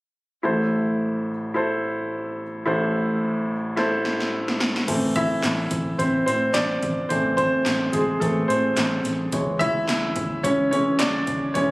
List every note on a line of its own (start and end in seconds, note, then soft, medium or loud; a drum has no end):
0.43 2.62 A1 soft
0.43 2.62 A2 soft
0.43 1.30 E4 medium
0.43 1.31 A4 medium
0.43 1.31 C5 medium
1.54 2.41 E4 medium
1.54 2.42 A4 medium
1.54 2.42 C5 medium
2.66 4.84 A1 medium
2.66 4.84 A2 medium
2.66 3.53 E4 medium
2.66 3.53 A4 medium
2.66 3.54 C5 medium
3.76 4.64 E4 medium
3.76 4.64 A4 medium
3.76 4.65 C5 medium
3.76 snare soft
4.05 snare soft
4.20 snare soft
4.48 snare medium
4.60 snare medium
4.76 snare medium
4.87 5.34 A1 medium
4.87 5.26 E3 soft
4.87 5.26 A3 soft
4.87 5.27 C4 medium
4.87 kick medium
4.87 closed hi-hat medium
4.87 crash medium
5.16 5.96 E4 medium
5.16 6.02 E5 medium
5.16 kick medium
5.16 closed hi-hat medium
5.43 5.67 A1 medium
5.43 snare medium
5.43 clap medium
5.43 closed hi-hat medium
5.71 5.94 A1 medium
5.71 kick medium
5.71 closed hi-hat medium
5.98 6.22 A1 medium
5.98 6.26 C4 medium
5.98 6.25 C5 medium
5.98 kick medium
5.98 closed hi-hat medium
6.26 6.50 A2 medium
6.26 6.53 C4 medium
6.26 6.55 C5 medium
6.26 closed hi-hat medium
6.54 6.77 A1 medium
6.54 7.07 D4 medium
6.54 7.12 D5 medium
6.54 snare loud
6.54 clap medium
6.54 closed hi-hat medium
6.83 7.06 A1 medium
6.83 kick medium
6.83 snare soft
6.83 closed hi-hat medium
7.09 7.56 A1 medium
7.09 8.20 E3 soft
7.09 8.20 A3 soft
7.09 7.37 C4 medium
7.09 7.35 C5 medium
7.09 kick medium
7.09 closed hi-hat medium
7.37 7.90 C4 medium
7.37 7.95 C5 medium
7.37 kick medium
7.37 closed hi-hat medium
7.66 7.89 A1 medium
7.66 snare medium
7.66 clap medium
7.66 closed hi-hat medium
7.92 8.17 A1 medium
7.92 8.20 G#3 medium
7.92 8.22 G#4 medium
7.92 kick medium
7.92 closed hi-hat medium
8.20 8.44 A1 medium
8.20 8.46 E3 soft
8.20 8.48 A3 medium
8.20 8.47 C4 soft
8.20 8.50 A4 medium
8.20 kick medium
8.20 closed hi-hat medium
8.48 8.72 A2 medium
8.48 9.02 C4 medium
8.48 9.00 C5 medium
8.48 closed hi-hat medium
8.76 9.00 A1 medium
8.76 snare loud
8.76 clap medium
8.76 closed hi-hat medium
9.05 9.28 A1 medium
9.05 snare soft
9.05 closed hi-hat medium
9.32 9.78 C#2 medium
9.32 10.70 E3 soft
9.32 10.71 G#3 soft
9.32 10.42 C#5 soft
9.32 kick medium
9.32 closed hi-hat medium
9.59 10.40 E4 medium
9.59 10.39 E5 loud
9.59 kick medium
9.59 closed hi-hat medium
9.88 10.11 C#2 medium
9.88 snare medium
9.88 clap medium
9.88 closed hi-hat medium
10.16 10.39 C#2 medium
10.16 kick medium
10.16 closed hi-hat medium
10.43 10.73 C#2 medium
10.43 10.71 C#4 medium
10.43 10.70 C#5 medium
10.43 kick medium
10.43 closed hi-hat medium
10.71 10.95 C#3 medium
10.71 10.97 E3 soft
10.71 10.97 G#3 soft
10.71 10.98 C#4 medium
10.71 11.00 C#5 medium
10.71 closed hi-hat medium
10.99 11.22 C#2 medium
10.99 11.52 D4 medium
10.99 11.56 D5 medium
10.99 snare loud
10.99 clap medium
10.99 closed hi-hat medium
11.27 11.50 C#2 medium
11.27 kick medium
11.27 snare soft
11.27 closed hi-hat medium
11.54 11.71 C#2 medium
11.54 11.71 E3 soft
11.54 11.71 G#3 soft
11.54 11.71 C#4 medium
11.54 11.71 C#5 medium
11.54 kick medium
11.54 closed hi-hat medium